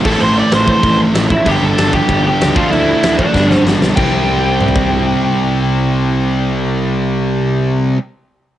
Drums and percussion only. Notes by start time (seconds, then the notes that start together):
0.05 kick, crash
0.21 crash
0.52 snare, crash
0.68 kick
0.83 kick, crash
1.15 snare, crash
1.30 kick
1.46 kick, crash
1.78 snare, crash
1.93 kick
2.09 kick, crash
2.41 snare, crash
2.56 kick
2.73 crash
3.03 snare, crash
3.19 kick
3.34 kick, snare
3.51 snare
3.67 snare
3.82 snare
3.97 kick, crash
4.61 mid tom
4.68 floor tom
4.76 kick